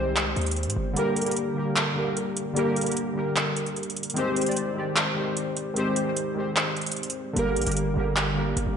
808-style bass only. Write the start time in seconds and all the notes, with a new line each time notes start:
Already playing: C2
0.36 D#2
0.66 G#2
0.76 G1
7.36 G1
7.56 A#1
7.66 G1
7.97 G1
8.57 G1
8.66 G1